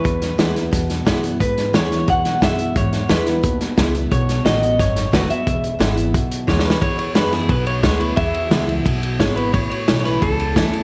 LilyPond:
<<
  \new Staff \with { instrumentName = "Clean electric guitar" } { \time 4/4 \key e \major \tempo 4 = 177 b'2~ b'8 r4. | b'4 cis''4 fis''4 e''4 | cis''4 b'4. r4. | cis''4 dis''4 cis''4 b'8 e''8~ |
e''2~ e''8 r8 cis''8 b'8 | \key e \mixolydian cis''8 cis''8 b'8 gis'8 b'8 cis''8 cis''8 b'8 | e''4. r4. cis''8 b'8 | cis''8 cis''8.~ cis''32 cis''32 b'8 a'2 | }
  \new Staff \with { instrumentName = "Steel-string acoustic guitar" } { \time 4/4 \key e \major << { r4 <e gis b e'>8 <b e'>8 r4 <e gis b e'>8 <b e'>8 | r4 <e gis b e'>8 <b e'>8 r4 <e gis b e'>8 <b e'>8 | r4 <e gis b e'>8 <b e'>8 r4 <e gis b e'>8 <b e'>8 | r4 <dis a b fis'>8 <b fis'>8 r4 <dis a b fis'>8 <b fis'>8 |
r4 <e gis b e'>8 <b e'>8 r4 <e gis b e'>8 <b e'>8 | \key e \mixolydian r4 <e gis b e'>8 <b e'>8 r4 <e gis b e'>8 <b e'>8 | r4 <e gis b e'>8 <b e'>8 r4 <e gis b e'>8 <b e'>8 | r4 <e a cis' e'>4 r4 <e a cis' e'>8 <cis' e'>8 | } \\ { e,2 b,2 | e,2 b,2 | e,2 b,2 | b,2 fis,2 |
e,2 b,2 | e,2 b,2 | e,2 b,2 | a,2 e,2 | } >> }
  \new Staff \with { instrumentName = "Upright bass" } { \clef bass \time 4/4 \key e \major e,4 dis,4 e,4 fis,4 | gis,4 dis,4 e,4 fis,4 | gis,4 e,4 dis,4 cis,4 | b,,4 a,,4 gis,,4 fis,,8 r8 |
e,,4 gis,,4 b,,4 dis,4 | \key e \mixolydian e,4 fis,4 b,,4 d,4 | e,4 cis,4 b,,4 gis,,4 | a,,8 r8 b,,4 cis,4 d,4 | }
  \new DrumStaff \with { instrumentName = "Drums" } \drummode { \time 4/4 <hh bd>8 <hh sn>8 <hh sn>8 <hh sn>8 <hh bd sn>8 <hh sn>8 <hh bd sn>8 hh8 | <hh bd>8 <hh sn>8 <hh sn>8 <hh sn>8 <hh bd>8 <hh sn>8 <hh bd sn>8 hh8 | <hh bd>8 <hh sn>8 <hh sn>8 <hh sn>8 <hh bd>8 <hh sn>8 <hh bd sn>8 hh8 | <hh bd>8 <hh sn>8 <hh sn>8 hh8 <hh bd sn>8 <hh sn>8 <hh bd sn>8 hh8 |
<hh bd>8 hh8 <hh sn>8 hh8 <hh bd>8 hh8 \tuplet 3/2 { <bd sn>8 sn8 sn8 } | <bd cymr>8 cymr8 <cymr sn>8 <cymr sn>8 <bd cymr>8 cymr8 <bd cymr sn>8 cymr8 | <bd cymr>8 cymr8 <cymr sn>8 cymr8 <bd cymr>8 cymr8 <bd cymr sn>8 cymr8 | <bd cymr>8 cymr8 <cymr sn>8 <cymr sn>8 <bd cymr>8 cymr8 <bd cymr sn>8 cymr8 | }
>>